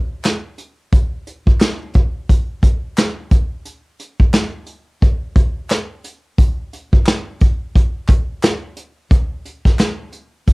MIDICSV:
0, 0, Header, 1, 2, 480
1, 0, Start_track
1, 0, Tempo, 681818
1, 654, Time_signature, 4, 2, 24, 8
1, 7413, End_track
2, 0, Start_track
2, 0, Title_t, "Drums"
2, 172, Note_on_c, 9, 39, 86
2, 172, Note_on_c, 9, 42, 92
2, 177, Note_on_c, 9, 38, 107
2, 242, Note_off_c, 9, 39, 0
2, 243, Note_off_c, 9, 42, 0
2, 248, Note_off_c, 9, 38, 0
2, 406, Note_on_c, 9, 42, 81
2, 477, Note_off_c, 9, 42, 0
2, 650, Note_on_c, 9, 42, 103
2, 651, Note_on_c, 9, 36, 110
2, 720, Note_off_c, 9, 42, 0
2, 722, Note_off_c, 9, 36, 0
2, 892, Note_on_c, 9, 42, 77
2, 963, Note_off_c, 9, 42, 0
2, 1034, Note_on_c, 9, 36, 85
2, 1104, Note_off_c, 9, 36, 0
2, 1129, Note_on_c, 9, 39, 69
2, 1129, Note_on_c, 9, 42, 81
2, 1135, Note_on_c, 9, 38, 113
2, 1199, Note_off_c, 9, 39, 0
2, 1200, Note_off_c, 9, 42, 0
2, 1205, Note_off_c, 9, 38, 0
2, 1362, Note_on_c, 9, 42, 63
2, 1374, Note_on_c, 9, 36, 96
2, 1432, Note_off_c, 9, 42, 0
2, 1445, Note_off_c, 9, 36, 0
2, 1614, Note_on_c, 9, 42, 81
2, 1615, Note_on_c, 9, 36, 90
2, 1685, Note_off_c, 9, 42, 0
2, 1686, Note_off_c, 9, 36, 0
2, 1851, Note_on_c, 9, 36, 94
2, 1852, Note_on_c, 9, 42, 75
2, 1921, Note_off_c, 9, 36, 0
2, 1923, Note_off_c, 9, 42, 0
2, 2094, Note_on_c, 9, 42, 92
2, 2095, Note_on_c, 9, 39, 90
2, 2100, Note_on_c, 9, 38, 115
2, 2165, Note_off_c, 9, 39, 0
2, 2165, Note_off_c, 9, 42, 0
2, 2170, Note_off_c, 9, 38, 0
2, 2330, Note_on_c, 9, 42, 78
2, 2333, Note_on_c, 9, 36, 99
2, 2400, Note_off_c, 9, 42, 0
2, 2404, Note_off_c, 9, 36, 0
2, 2571, Note_on_c, 9, 42, 97
2, 2642, Note_off_c, 9, 42, 0
2, 2813, Note_on_c, 9, 42, 77
2, 2883, Note_off_c, 9, 42, 0
2, 2955, Note_on_c, 9, 36, 85
2, 3026, Note_off_c, 9, 36, 0
2, 3047, Note_on_c, 9, 42, 80
2, 3053, Note_on_c, 9, 38, 117
2, 3053, Note_on_c, 9, 39, 78
2, 3118, Note_off_c, 9, 42, 0
2, 3123, Note_off_c, 9, 38, 0
2, 3124, Note_off_c, 9, 39, 0
2, 3282, Note_on_c, 9, 42, 67
2, 3353, Note_off_c, 9, 42, 0
2, 3534, Note_on_c, 9, 42, 80
2, 3536, Note_on_c, 9, 36, 93
2, 3604, Note_off_c, 9, 42, 0
2, 3607, Note_off_c, 9, 36, 0
2, 3772, Note_on_c, 9, 36, 105
2, 3775, Note_on_c, 9, 42, 76
2, 3843, Note_off_c, 9, 36, 0
2, 3845, Note_off_c, 9, 42, 0
2, 4013, Note_on_c, 9, 39, 83
2, 4014, Note_on_c, 9, 42, 95
2, 4019, Note_on_c, 9, 38, 107
2, 4083, Note_off_c, 9, 39, 0
2, 4085, Note_off_c, 9, 42, 0
2, 4090, Note_off_c, 9, 38, 0
2, 4252, Note_on_c, 9, 42, 79
2, 4323, Note_off_c, 9, 42, 0
2, 4493, Note_on_c, 9, 42, 92
2, 4494, Note_on_c, 9, 36, 109
2, 4563, Note_off_c, 9, 42, 0
2, 4565, Note_off_c, 9, 36, 0
2, 4738, Note_on_c, 9, 42, 74
2, 4808, Note_off_c, 9, 42, 0
2, 4878, Note_on_c, 9, 36, 92
2, 4948, Note_off_c, 9, 36, 0
2, 4972, Note_on_c, 9, 39, 70
2, 4977, Note_on_c, 9, 42, 77
2, 4983, Note_on_c, 9, 38, 115
2, 5042, Note_off_c, 9, 39, 0
2, 5048, Note_off_c, 9, 42, 0
2, 5053, Note_off_c, 9, 38, 0
2, 5211, Note_on_c, 9, 42, 68
2, 5220, Note_on_c, 9, 36, 92
2, 5282, Note_off_c, 9, 42, 0
2, 5290, Note_off_c, 9, 36, 0
2, 5460, Note_on_c, 9, 36, 88
2, 5463, Note_on_c, 9, 42, 80
2, 5530, Note_off_c, 9, 36, 0
2, 5533, Note_off_c, 9, 42, 0
2, 5690, Note_on_c, 9, 39, 67
2, 5694, Note_on_c, 9, 36, 99
2, 5698, Note_on_c, 9, 42, 76
2, 5760, Note_off_c, 9, 39, 0
2, 5764, Note_off_c, 9, 36, 0
2, 5768, Note_off_c, 9, 42, 0
2, 5935, Note_on_c, 9, 39, 83
2, 5936, Note_on_c, 9, 42, 85
2, 5941, Note_on_c, 9, 38, 114
2, 6006, Note_off_c, 9, 39, 0
2, 6006, Note_off_c, 9, 42, 0
2, 6011, Note_off_c, 9, 38, 0
2, 6170, Note_on_c, 9, 42, 81
2, 6241, Note_off_c, 9, 42, 0
2, 6411, Note_on_c, 9, 42, 101
2, 6413, Note_on_c, 9, 36, 115
2, 6481, Note_off_c, 9, 42, 0
2, 6484, Note_off_c, 9, 36, 0
2, 6655, Note_on_c, 9, 42, 72
2, 6725, Note_off_c, 9, 42, 0
2, 6796, Note_on_c, 9, 36, 83
2, 6799, Note_on_c, 9, 38, 36
2, 6866, Note_off_c, 9, 36, 0
2, 6870, Note_off_c, 9, 38, 0
2, 6891, Note_on_c, 9, 39, 75
2, 6891, Note_on_c, 9, 42, 74
2, 6897, Note_on_c, 9, 38, 108
2, 6962, Note_off_c, 9, 39, 0
2, 6962, Note_off_c, 9, 42, 0
2, 6968, Note_off_c, 9, 38, 0
2, 7126, Note_on_c, 9, 42, 64
2, 7196, Note_off_c, 9, 42, 0
2, 7373, Note_on_c, 9, 42, 91
2, 7375, Note_on_c, 9, 36, 83
2, 7413, Note_off_c, 9, 36, 0
2, 7413, Note_off_c, 9, 42, 0
2, 7413, End_track
0, 0, End_of_file